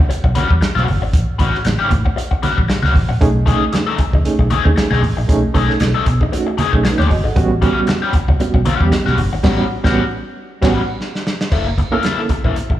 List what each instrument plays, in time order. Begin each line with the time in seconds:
0.09 muted overdriven electric guitar stroke, muted fingered electric bass stroke, closed hi-hat
0.24 fingered electric bass B1, muted overdriven electric guitar stroke, kick
0.35 overdriven electric guitar G3 C#4 F#4, closed hi-hat, muted conga, high conga
0.50 fingered electric bass E2, muted overdriven electric guitar stroke, kick
0.61 muted overdriven electric guitar stroke, snare, closed hi-hat, muted conga
0.75 fingered electric bass B1, overdriven electric guitar G3 C#4 F#4, snare, high conga
0.87 fingered electric bass G1, muted overdriven electric guitar stroke, open hi-hat, high conga, low conga
1.02 fingered electric bass G#1, muted overdriven electric guitar stroke
1.13 fingered electric bass A1, kick, closed hi-hat, muted conga
1.39 fingered electric bass A1, overdriven electric guitar G3 C#4 F#4, kick, closed hi-hat, high conga
1.55 snare
1.65 fingered electric bass A1, muted overdriven electric guitar stroke, snare, closed hi-hat, high conga
1.79 overdriven electric guitar G3 C#4 G4
1.90 fingered electric bass A2, muted overdriven electric guitar stroke, kick, closed hi-hat, high conga, low conga
2.05 muted overdriven electric guitar stroke, kick
2.16 muted overdriven electric guitar stroke, closed hi-hat, muted conga
2.31 muted overdriven electric guitar stroke, kick
2.43 overdriven electric guitar G3 C#4 F#4, muted fingered electric bass stroke, closed hi-hat, muted conga, high conga
2.58 fingered electric bass A1, muted overdriven electric guitar stroke, kick
2.68 muted overdriven electric guitar stroke, snare, closed hi-hat, muted conga
2.82 fingered electric bass C#2, overdriven electric guitar G3 C#4 F#4, snare, high conga
2.94 fingered electric bass A1, muted overdriven electric guitar stroke, kick, open hi-hat, muted conga, high conga, low conga
3.09 fingered electric bass A#1, muted overdriven electric guitar stroke
3.21 fingered electric bass B1, reed electric piano A3 C#4 D#4 G#4, kick, closed hi-hat
3.46 overdriven electric guitar A3 D#4 G#4, reed electric piano A3 C#4 D#4 G#4, kick, closed hi-hat, muted conga, high conga
3.73 muted overdriven electric guitar stroke, snare, closed hi-hat, muted conga, high conga
3.87 overdriven electric guitar A3 D#4 A4
3.98 muted fingered electric bass stroke, muted overdriven electric guitar stroke, kick, closed hi-hat, high conga, low conga
4.13 fingered electric bass C#2, reed electric piano D#4 G#4, muted overdriven electric guitar stroke, kick, low conga
4.24 reed electric piano A3 C#4 D#4 G#4, muted fingered electric bass stroke, closed hi-hat, muted conga
4.39 fingered electric bass B1, muted overdriven electric guitar stroke, kick
4.50 overdriven electric guitar A3 D#4 G#4, closed hi-hat, muted conga, high conga
4.65 fingered electric bass D#2, reed electric piano A3 C#4 D#4 G#4, muted overdriven electric guitar stroke, kick
4.76 muted overdriven electric guitar stroke, snare, closed hi-hat, muted conga
4.91 fingered electric bass B1, overdriven electric guitar A3 D#4 G#4, snare, high conga
5.02 fingered electric bass A1, muted overdriven electric guitar stroke, open hi-hat, high conga, low conga
5.17 fingered electric bass A#1, muted overdriven electric guitar stroke
5.28 fingered electric bass B1, reed electric piano A3 C#4 D#4 G#4, kick, closed hi-hat, muted conga
5.54 fingered electric bass B1, reed electric piano A3 C#4 D#4 A4, overdriven electric guitar A3 D#4 G#4, kick, closed hi-hat, muted conga, high conga
5.70 snare
5.80 fingered electric bass B1, muted overdriven electric guitar stroke, snare, closed hi-hat, muted conga, high conga
5.95 overdriven electric guitar A3 D#4 A4
6.06 fingered electric bass B2, muted overdriven electric guitar stroke, kick, closed hi-hat, high conga, low conga
6.21 reed electric piano D#4 A4, muted overdriven electric guitar stroke, kick, low conga
6.32 reed electric piano A3 C#4 D#4 F#4, muted overdriven electric guitar stroke, closed hi-hat
6.47 muted overdriven electric guitar stroke
6.58 overdriven electric guitar A3 D#4 G#4, muted fingered electric bass stroke, closed hi-hat, high conga
6.73 fingered electric bass B1, reed electric piano A3 C#4 D#4 G#4, muted overdriven electric guitar stroke, kick
6.84 reed electric piano D#4, muted overdriven electric guitar stroke, snare, closed hi-hat, muted conga
6.98 fingered electric bass D#2, overdriven electric guitar A3 D#4 G#4, reed electric piano C#5, snare, high conga
7.09 fingered electric bass G1, reed electric piano F#4 D#5, muted overdriven electric guitar stroke, kick, open hi-hat, high conga, low conga
7.24 fingered electric bass G#1, reed electric piano A4 F#5, muted overdriven electric guitar stroke
7.36 fingered electric bass A1, reed electric piano G3 B3 C#4 F#4, kick, closed hi-hat
7.62 reed electric piano G3 B3 C#4 F#4, overdriven electric guitar G3 C#4 F#4, kick, closed hi-hat, high conga
7.87 muted overdriven electric guitar stroke, snare, closed hi-hat, muted conga, high conga
8.02 overdriven electric guitar G3 C#4 G4
8.13 muted overdriven electric guitar stroke, muted fingered electric bass stroke, kick, closed hi-hat, high conga, low conga
8.28 fingered electric bass C#2, reed electric piano C#4 F#4, muted overdriven electric guitar stroke, kick, low conga
8.40 reed electric piano G3 B3 C#4 F#4, muted overdriven electric guitar stroke, muted fingered electric bass stroke, closed hi-hat
8.54 fingered electric bass B1, muted overdriven electric guitar stroke, kick
8.65 overdriven electric guitar G3 C#4 F#4, closed hi-hat, muted conga, high conga
8.80 fingered electric bass E2, reed electric piano G3 B3 C#4 G4, muted overdriven electric guitar stroke, kick
8.92 muted overdriven electric guitar stroke, snare, closed hi-hat
9.06 fingered electric bass B1, overdriven electric guitar G3 C#4 F#4, snare, high conga
9.18 fingered electric bass G1, muted overdriven electric guitar stroke, open hi-hat, high conga, low conga
9.33 fingered electric bass G#1, muted overdriven electric guitar stroke
9.44 fingered electric bass A1, overdriven electric guitar G3 C#4 F#4, reed electric piano G3 B3 C#4 F#4, kick, snare, crash
9.84 fingered electric bass A1, reed electric piano G3 B3 C#4 F#4, overdriven electric guitar G3 C#4 F#4, kick, snare
10.62 fingered electric bass A1, reed electric piano G3 B3 C#4 F#4, overdriven electric guitar G3 C#4 F#4, kick, snare, crash
11.01 snare
11.15 snare
11.27 snare
11.41 snare
11.52 fingered electric bass F#1, overdriven electric guitar A#3 E4 A4, kick, crash, muted conga
11.67 muted overdriven electric guitar stroke
11.78 muted overdriven electric guitar stroke, kick, closed hi-hat, high conga
11.92 reed electric piano A#3 C#4 E4 A4, overdriven electric guitar A#3 E4 A#4
12.03 overdriven electric guitar A#3 E4 A4, snare, closed hi-hat, high conga
12.18 reed electric piano A#3 C#4 E4 A4
12.29 muted overdriven electric guitar stroke, muted fingered electric bass stroke, kick, closed hi-hat, high conga, low conga
12.44 fingered electric bass A#1, overdriven electric guitar A#3 E4 A#4, reed electric piano E4 A4, kick, low conga
12.56 muted fingered electric bass stroke, closed hi-hat, muted conga
12.70 fingered electric bass A1, muted overdriven electric guitar stroke, kick